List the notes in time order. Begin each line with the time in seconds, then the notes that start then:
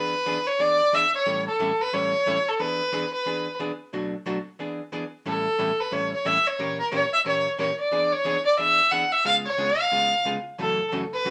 Already playing: E3 B3 D4 G#4 B4
0.26 E3 B3 D4 G#4
0.47 C#5
0.59 E3 B3 D4 G#4 D5
0.93 E3 B3 D4 G#4 E5
1.15 C#5
1.26 A2 E3 G3 C#4 E4 A4
1.48 A4
1.59 A2 E3 G3 C#4 E4 A4
1.81 B4
1.93 A2 E3 G3 C#4 E4 A4 C#5
2.26 A2 E3 G3 C#4 E4 A4
2.49 A4
2.59 E3 B3 D4 G#4 B4
2.92 E3 B3 D4 G#4
3.13 B4
3.26 E3 B3 D4 G#4
3.59 E3 B3 D4 G#4
3.93 B2 F#3 A3 D4 F#4
4.26 B2 F#3 A3 D4 F#4
4.59 E3 B3 D4 G#4
4.92 E3 B3 D4 G#4
5.26 A2 E3 G3 C#4 E4 A4
5.58 A2 E3 G3 C#4 E4 A4
5.80 B4
5.91 A2 E3 G3 C#4 E4 A4 C#5
6.14 C#5
6.25 A2 E3 G3 C#4 E4 A4 E5
6.47 C#5
6.59 A#2 E3 A#3 C#4 G4 A#4
6.80 A#4
6.92 A#2 E3 A#3 C#4 G4 A#4 C#5
7.13 E5
7.25 A#2 E3 A#3 C#4 G4 A#4 C#5
7.58 A#2 E3 A#3 C#4 G4 A#4 C#5
7.80 D5
7.92 E3 B3 D4 G#4
8.12 C#5
8.25 E3 B3 D4 G#4
8.46 D5
8.58 E3 B3 D4 G#4 E5
8.91 E3 B3 D4 G#4 F#5
9.12 E5
9.24 C#3 G#3 B3 F4 G#4 F5
9.46 C#5
9.58 C#3 G#3 B3 F4 G#4
9.80 F5
9.92 C#3 G#3 B3 F4 G#4
10.25 C#3 G#3 B3 F4 G#4
10.58 F#2 C#3 E3 A3 C#4 F#4 A4
10.92 F#2 C#3 E3 A3 C#4 F#4
11.13 B4
11.25 F#2 C#3 E3 A3 C#4 F#4